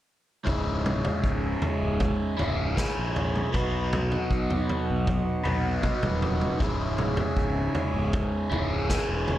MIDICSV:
0, 0, Header, 1, 5, 480
1, 0, Start_track
1, 0, Key_signature, 4, "minor"
1, 0, Tempo, 767263
1, 295, Time_signature, 4, 2, 24, 8
1, 5870, End_track
2, 0, Start_track
2, 0, Title_t, "Harmonium"
2, 0, Program_c, 0, 20
2, 284, Note_on_c, 0, 76, 54
2, 286, Note_on_c, 0, 80, 63
2, 287, Note_on_c, 0, 68, 54
2, 288, Note_on_c, 0, 73, 51
2, 2190, Note_off_c, 0, 76, 0
2, 2191, Note_off_c, 0, 80, 0
2, 2192, Note_off_c, 0, 68, 0
2, 2192, Note_off_c, 0, 73, 0
2, 2214, Note_on_c, 0, 75, 56
2, 2216, Note_on_c, 0, 71, 51
2, 2216, Note_on_c, 0, 78, 62
2, 2219, Note_on_c, 0, 66, 53
2, 4116, Note_off_c, 0, 75, 0
2, 4117, Note_off_c, 0, 71, 0
2, 4117, Note_off_c, 0, 78, 0
2, 4119, Note_off_c, 0, 66, 0
2, 4119, Note_on_c, 0, 68, 52
2, 4119, Note_on_c, 0, 80, 66
2, 4120, Note_on_c, 0, 76, 48
2, 4123, Note_on_c, 0, 73, 56
2, 5870, Note_off_c, 0, 68, 0
2, 5870, Note_off_c, 0, 73, 0
2, 5870, Note_off_c, 0, 76, 0
2, 5870, Note_off_c, 0, 80, 0
2, 5870, End_track
3, 0, Start_track
3, 0, Title_t, "Overdriven electric guitar"
3, 0, Program_c, 1, 29
3, 278, Note_on_c, 1, 37, 64
3, 289, Note_on_c, 1, 44, 65
3, 294, Note_on_c, 1, 49, 73
3, 299, Note_on_c, 1, 56, 68
3, 304, Note_on_c, 1, 64, 68
3, 1472, Note_off_c, 1, 37, 0
3, 1474, Note_off_c, 1, 64, 0
3, 1477, Note_off_c, 1, 44, 0
3, 1480, Note_off_c, 1, 49, 0
3, 1480, Note_off_c, 1, 56, 0
3, 1481, Note_on_c, 1, 64, 67
3, 1488, Note_on_c, 1, 56, 63
3, 1492, Note_on_c, 1, 49, 63
3, 1498, Note_on_c, 1, 44, 58
3, 1504, Note_on_c, 1, 37, 58
3, 1710, Note_off_c, 1, 37, 0
3, 1714, Note_off_c, 1, 64, 0
3, 1717, Note_off_c, 1, 56, 0
3, 1717, Note_on_c, 1, 37, 47
3, 1719, Note_off_c, 1, 44, 0
3, 1719, Note_off_c, 1, 49, 0
3, 1726, Note_on_c, 1, 44, 60
3, 1730, Note_on_c, 1, 49, 56
3, 1737, Note_on_c, 1, 56, 59
3, 1742, Note_on_c, 1, 64, 57
3, 2192, Note_off_c, 1, 37, 0
3, 2196, Note_off_c, 1, 44, 0
3, 2198, Note_off_c, 1, 49, 0
3, 2202, Note_off_c, 1, 56, 0
3, 2203, Note_on_c, 1, 47, 70
3, 2204, Note_off_c, 1, 64, 0
3, 2207, Note_on_c, 1, 54, 71
3, 2212, Note_on_c, 1, 59, 71
3, 2214, Note_on_c, 1, 63, 67
3, 2219, Note_on_c, 1, 66, 72
3, 2226, Note_on_c, 1, 71, 70
3, 3394, Note_off_c, 1, 71, 0
3, 3395, Note_off_c, 1, 47, 0
3, 3397, Note_off_c, 1, 54, 0
3, 3398, Note_off_c, 1, 66, 0
3, 3399, Note_off_c, 1, 59, 0
3, 3400, Note_off_c, 1, 63, 0
3, 3401, Note_on_c, 1, 71, 74
3, 3406, Note_on_c, 1, 66, 64
3, 3411, Note_on_c, 1, 63, 62
3, 3414, Note_on_c, 1, 59, 64
3, 3418, Note_on_c, 1, 54, 57
3, 3426, Note_on_c, 1, 47, 54
3, 3627, Note_off_c, 1, 47, 0
3, 3634, Note_off_c, 1, 54, 0
3, 3634, Note_off_c, 1, 71, 0
3, 3634, Note_on_c, 1, 47, 61
3, 3636, Note_off_c, 1, 66, 0
3, 3639, Note_off_c, 1, 63, 0
3, 3640, Note_off_c, 1, 59, 0
3, 3642, Note_on_c, 1, 54, 61
3, 3648, Note_on_c, 1, 59, 60
3, 3652, Note_on_c, 1, 63, 59
3, 3655, Note_on_c, 1, 66, 61
3, 3661, Note_on_c, 1, 71, 65
3, 4111, Note_off_c, 1, 47, 0
3, 4114, Note_off_c, 1, 54, 0
3, 4117, Note_off_c, 1, 59, 0
3, 4117, Note_on_c, 1, 37, 68
3, 4120, Note_off_c, 1, 63, 0
3, 4121, Note_off_c, 1, 66, 0
3, 4124, Note_off_c, 1, 71, 0
3, 4126, Note_on_c, 1, 44, 72
3, 4131, Note_on_c, 1, 49, 68
3, 4139, Note_on_c, 1, 56, 71
3, 4144, Note_on_c, 1, 64, 81
3, 5307, Note_off_c, 1, 64, 0
3, 5312, Note_off_c, 1, 37, 0
3, 5315, Note_on_c, 1, 64, 70
3, 5316, Note_off_c, 1, 44, 0
3, 5316, Note_off_c, 1, 56, 0
3, 5319, Note_off_c, 1, 49, 0
3, 5324, Note_on_c, 1, 56, 67
3, 5329, Note_on_c, 1, 49, 62
3, 5335, Note_on_c, 1, 44, 58
3, 5339, Note_on_c, 1, 37, 59
3, 5547, Note_off_c, 1, 37, 0
3, 5551, Note_off_c, 1, 64, 0
3, 5552, Note_off_c, 1, 44, 0
3, 5554, Note_on_c, 1, 37, 61
3, 5555, Note_off_c, 1, 56, 0
3, 5558, Note_off_c, 1, 49, 0
3, 5560, Note_on_c, 1, 44, 51
3, 5567, Note_on_c, 1, 49, 65
3, 5572, Note_on_c, 1, 56, 62
3, 5576, Note_on_c, 1, 64, 67
3, 5870, Note_off_c, 1, 37, 0
3, 5870, Note_off_c, 1, 44, 0
3, 5870, Note_off_c, 1, 49, 0
3, 5870, Note_off_c, 1, 56, 0
3, 5870, Note_off_c, 1, 64, 0
3, 5870, End_track
4, 0, Start_track
4, 0, Title_t, "Fingered electric bass"
4, 0, Program_c, 2, 33
4, 295, Note_on_c, 2, 25, 84
4, 668, Note_off_c, 2, 25, 0
4, 775, Note_on_c, 2, 25, 81
4, 962, Note_off_c, 2, 25, 0
4, 1141, Note_on_c, 2, 25, 72
4, 1326, Note_off_c, 2, 25, 0
4, 1500, Note_on_c, 2, 25, 74
4, 1778, Note_off_c, 2, 25, 0
4, 1862, Note_on_c, 2, 34, 63
4, 2140, Note_off_c, 2, 34, 0
4, 2218, Note_on_c, 2, 35, 81
4, 2591, Note_off_c, 2, 35, 0
4, 2692, Note_on_c, 2, 35, 82
4, 2880, Note_off_c, 2, 35, 0
4, 3066, Note_on_c, 2, 35, 76
4, 3249, Note_off_c, 2, 35, 0
4, 3422, Note_on_c, 2, 35, 73
4, 3700, Note_off_c, 2, 35, 0
4, 3779, Note_on_c, 2, 27, 60
4, 4058, Note_off_c, 2, 27, 0
4, 4130, Note_on_c, 2, 25, 92
4, 4506, Note_off_c, 2, 25, 0
4, 4606, Note_on_c, 2, 25, 86
4, 4796, Note_off_c, 2, 25, 0
4, 4968, Note_on_c, 2, 25, 77
4, 5158, Note_off_c, 2, 25, 0
4, 5322, Note_on_c, 2, 25, 72
4, 5607, Note_off_c, 2, 25, 0
4, 5684, Note_on_c, 2, 28, 64
4, 5870, Note_off_c, 2, 28, 0
4, 5870, End_track
5, 0, Start_track
5, 0, Title_t, "Drums"
5, 294, Note_on_c, 9, 36, 75
5, 294, Note_on_c, 9, 43, 64
5, 356, Note_off_c, 9, 36, 0
5, 356, Note_off_c, 9, 43, 0
5, 537, Note_on_c, 9, 47, 61
5, 599, Note_off_c, 9, 47, 0
5, 655, Note_on_c, 9, 43, 67
5, 717, Note_off_c, 9, 43, 0
5, 773, Note_on_c, 9, 36, 81
5, 836, Note_off_c, 9, 36, 0
5, 1012, Note_on_c, 9, 43, 71
5, 1075, Note_off_c, 9, 43, 0
5, 1252, Note_on_c, 9, 43, 70
5, 1255, Note_on_c, 9, 36, 85
5, 1314, Note_off_c, 9, 43, 0
5, 1317, Note_off_c, 9, 36, 0
5, 1497, Note_on_c, 9, 43, 63
5, 1559, Note_off_c, 9, 43, 0
5, 1735, Note_on_c, 9, 36, 74
5, 1736, Note_on_c, 9, 38, 58
5, 1798, Note_off_c, 9, 36, 0
5, 1799, Note_off_c, 9, 38, 0
5, 1978, Note_on_c, 9, 43, 65
5, 2040, Note_off_c, 9, 43, 0
5, 2098, Note_on_c, 9, 47, 46
5, 2161, Note_off_c, 9, 47, 0
5, 2216, Note_on_c, 9, 36, 86
5, 2218, Note_on_c, 9, 43, 66
5, 2278, Note_off_c, 9, 36, 0
5, 2280, Note_off_c, 9, 43, 0
5, 2458, Note_on_c, 9, 43, 60
5, 2458, Note_on_c, 9, 47, 69
5, 2520, Note_off_c, 9, 43, 0
5, 2520, Note_off_c, 9, 47, 0
5, 2576, Note_on_c, 9, 43, 58
5, 2638, Note_off_c, 9, 43, 0
5, 2694, Note_on_c, 9, 36, 81
5, 2756, Note_off_c, 9, 36, 0
5, 2818, Note_on_c, 9, 43, 61
5, 2880, Note_off_c, 9, 43, 0
5, 2937, Note_on_c, 9, 43, 65
5, 3000, Note_off_c, 9, 43, 0
5, 3174, Note_on_c, 9, 36, 88
5, 3175, Note_on_c, 9, 43, 75
5, 3237, Note_off_c, 9, 36, 0
5, 3238, Note_off_c, 9, 43, 0
5, 3411, Note_on_c, 9, 43, 63
5, 3474, Note_off_c, 9, 43, 0
5, 3649, Note_on_c, 9, 47, 56
5, 3651, Note_on_c, 9, 36, 75
5, 3711, Note_off_c, 9, 47, 0
5, 3713, Note_off_c, 9, 36, 0
5, 3771, Note_on_c, 9, 43, 64
5, 3771, Note_on_c, 9, 47, 59
5, 3834, Note_off_c, 9, 43, 0
5, 3834, Note_off_c, 9, 47, 0
5, 3893, Note_on_c, 9, 43, 62
5, 3956, Note_off_c, 9, 43, 0
5, 4012, Note_on_c, 9, 47, 51
5, 4074, Note_off_c, 9, 47, 0
5, 4130, Note_on_c, 9, 36, 84
5, 4132, Note_on_c, 9, 43, 62
5, 4193, Note_off_c, 9, 36, 0
5, 4195, Note_off_c, 9, 43, 0
5, 4369, Note_on_c, 9, 47, 63
5, 4431, Note_off_c, 9, 47, 0
5, 4486, Note_on_c, 9, 43, 62
5, 4548, Note_off_c, 9, 43, 0
5, 4608, Note_on_c, 9, 36, 83
5, 4671, Note_off_c, 9, 36, 0
5, 4847, Note_on_c, 9, 43, 68
5, 4909, Note_off_c, 9, 43, 0
5, 5088, Note_on_c, 9, 36, 91
5, 5090, Note_on_c, 9, 43, 79
5, 5150, Note_off_c, 9, 36, 0
5, 5152, Note_off_c, 9, 43, 0
5, 5328, Note_on_c, 9, 43, 62
5, 5390, Note_off_c, 9, 43, 0
5, 5565, Note_on_c, 9, 38, 53
5, 5567, Note_on_c, 9, 36, 75
5, 5628, Note_off_c, 9, 38, 0
5, 5629, Note_off_c, 9, 36, 0
5, 5805, Note_on_c, 9, 43, 61
5, 5867, Note_off_c, 9, 43, 0
5, 5870, End_track
0, 0, End_of_file